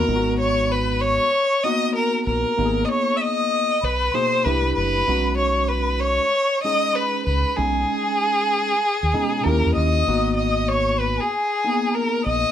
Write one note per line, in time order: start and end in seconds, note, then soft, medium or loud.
0.00 0.35 A#4 medium
0.00 0.35 A#5 medium
0.08 1.18 G#1 medium
0.08 1.23 G#3 medium
0.08 1.23 B3 medium
0.08 1.23 D#4 medium
0.08 0.17 F4 medium
0.15 1.27 F#4 medium
0.39 0.73 C#5 loud
0.39 0.71 C#6 medium
0.69 1.03 B4 medium
0.69 1.02 B5 medium
1.01 1.65 C#5 loud
1.01 1.66 C#6 medium
1.64 2.50 A#3 medium
1.64 2.51 B3 medium
1.64 2.51 D#4 medium
1.64 2.51 F#4 medium
1.64 1.95 D#5 loud
1.64 1.94 D#6 medium
1.94 2.24 A#4 loud
1.94 2.24 A#5 medium
2.26 2.43 A#1 medium
2.26 2.86 A#4 medium
2.26 2.86 A#5 medium
2.58 2.83 G#1 loud
2.58 3.73 A#3 medium
2.58 3.73 B3 medium
2.58 3.73 D#4 medium
2.58 2.67 G4 medium
2.65 3.77 G#4 medium
2.85 3.18 C#5 medium
2.85 2.90 D#5 medium
2.85 3.17 C#6 medium
2.85 2.90 D#6 medium
3.16 3.23 E5 medium
3.16 3.55 D#6 medium
3.16 3.20 E6 medium
3.21 3.86 D#5 loud
3.81 4.08 B1 medium
3.81 4.16 B4 loud
3.81 4.13 B5 medium
4.12 4.45 B2 medium
4.12 4.45 A#3 medium
4.12 4.45 D#4 medium
4.12 4.46 G#4 medium
4.12 4.46 C5 loud
4.12 4.45 C6 medium
4.43 4.71 C2 loud
4.43 5.03 A3 medium
4.43 5.03 D4 medium
4.43 5.04 E4 medium
4.43 5.04 G4 medium
4.43 4.75 B4 loud
4.43 4.73 B5 medium
4.74 5.02 F#1 medium
4.74 5.35 B4 loud
4.74 5.34 B5 medium
5.08 6.18 B1 loud
5.08 6.23 G#3 medium
5.08 6.23 C#4 medium
5.08 6.23 D#4 medium
5.08 6.24 F#4 medium
5.38 5.70 C#5 medium
5.38 5.70 C#6 medium
5.69 6.02 B4 medium
5.69 6.02 B5 medium
6.00 6.63 C#5 loud
6.00 6.62 C#6 medium
6.62 7.51 G#3 medium
6.62 7.51 C#4 medium
6.62 7.51 D#4 medium
6.62 7.51 G#4 medium
6.62 6.97 D#5 loud
6.62 6.95 D#6 medium
6.93 7.25 B4 loud
6.93 7.25 B5 medium
7.26 7.43 C#2 medium
7.26 7.58 B4 medium
7.26 7.58 B5 medium
7.56 7.83 B1 loud
7.56 8.73 G#3 medium
7.56 8.73 C#4 medium
7.56 8.73 D#4 medium
7.56 9.45 G#4 medium
7.56 8.73 G#4 medium
7.56 9.19 G#5 medium
9.03 9.12 D#2 medium
9.14 9.39 B2 medium
9.14 9.45 G#3 medium
9.14 9.43 C#4 medium
9.14 9.46 D#4 medium
9.14 9.46 G#4 medium
9.43 9.62 D#2 loud
9.43 10.02 A#3 medium
9.43 10.03 C#4 medium
9.43 10.03 E4 medium
9.43 10.03 G4 medium
9.43 9.75 A#4 loud
9.43 9.73 A#5 medium
9.66 9.75 E2 medium
9.74 10.02 D#2 medium
9.74 10.35 D#5 loud
9.74 10.34 D#6 medium
10.07 11.18 G#1 medium
10.07 11.23 A#3 medium
10.07 11.23 B3 medium
10.07 11.23 D#4 medium
10.07 11.24 F#4 medium
10.37 10.70 D#5 medium
10.37 10.70 D#6 medium
10.69 11.01 C#5 loud
10.69 11.00 C#6 medium
10.98 11.22 B4 medium
10.98 11.18 B5 medium
11.17 11.96 G#4 medium
11.17 11.93 G#5 medium
11.64 12.51 A#3 medium
11.64 12.51 B3 medium
11.64 12.51 D#4 medium
11.64 12.51 G#4 medium
11.92 12.26 A#4 medium
11.92 12.22 A#5 medium
12.22 12.43 A#1 medium
12.22 12.52 D#6 medium
12.27 12.52 D#5 loud